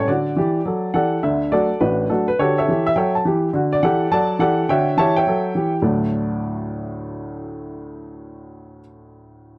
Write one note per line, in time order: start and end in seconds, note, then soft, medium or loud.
0.00 0.10 A3 soft
0.08 0.31 D3 medium
0.08 0.32 F#4 medium
0.08 0.94 D5 medium
0.36 0.60 E3 medium
0.36 0.61 G4 medium
0.65 0.89 F#3 soft
0.65 0.90 A4 soft
0.94 1.17 E3 medium
0.94 1.18 G4 medium
0.94 1.22 A4 medium
0.94 1.22 D5 medium
0.94 1.23 F#5 medium
1.23 1.48 D2 soft
1.23 1.48 D3 medium
1.23 1.52 E5 medium
1.52 1.68 F#3 soft
1.52 1.68 A3 soft
1.52 1.68 D4 soft
1.52 1.80 F#4 medium
1.52 1.79 A4 medium
1.52 1.81 D5 medium
1.81 2.05 A1 soft
1.81 2.05 A2 medium
1.81 2.08 D4 soft
1.81 2.08 F#4 soft
1.81 2.10 B4 medium
2.10 2.25 F#3 soft
2.10 2.26 A3 soft
2.10 2.28 D4 soft
2.10 2.27 F#4 soft
2.10 2.28 A4 medium
2.28 2.38 B4 medium
2.39 2.62 D3 medium
2.39 2.63 F#4 medium
2.39 2.57 G4 medium
2.39 2.57 A4 medium
2.39 2.58 C#5 medium
2.58 2.85 A4 medium
2.58 2.85 C#5 medium
2.58 2.85 E5 medium
2.68 2.91 E3 medium
2.68 2.92 G4 medium
2.87 2.96 E5 medium
2.96 3.19 F#3 soft
2.96 3.20 A4 soft
2.96 3.14 C#5 medium
2.96 3.14 E5 medium
2.96 3.15 G5 medium
3.15 3.25 A5 medium
3.25 3.48 E3 medium
3.25 3.49 G4 medium
3.53 3.77 D3 medium
3.53 3.78 F#4 medium
3.73 3.83 D5 medium
3.83 4.06 E3 medium
3.83 4.07 G4 medium
3.83 4.11 A4 medium
3.83 4.11 D5 medium
3.83 4.11 F#5 medium
4.11 4.35 F#3 medium
4.11 4.36 A4 medium
4.11 4.39 D5 medium
4.11 4.39 F#5 medium
4.11 4.41 A5 medium
4.39 4.63 E3 medium
4.39 4.64 G4 medium
4.39 4.68 A4 medium
4.39 4.68 D5 medium
4.39 4.69 F#5 medium
4.69 4.92 D3 medium
4.69 4.94 F#4 medium
4.69 4.97 C#5 medium
4.69 4.97 E5 medium
4.69 4.98 G5 medium
4.97 5.21 E3 medium
4.97 5.22 G4 medium
4.97 5.16 C#5 medium
4.97 5.16 E5 medium
4.97 5.17 A5 medium
5.16 5.72 C#5 medium
5.16 5.72 E5 medium
5.16 5.75 G5 medium
5.27 5.50 F#3 medium
5.27 5.51 A4 medium
5.55 5.79 E3 medium
5.55 5.80 G4 medium
5.82 8.79 D2 soft
5.82 8.79 A2 soft
5.82 8.79 F#3 soft
5.82 8.80 A3 soft
5.82 8.80 D4 soft
5.82 8.80 F#4 soft
5.82 8.80 D5 medium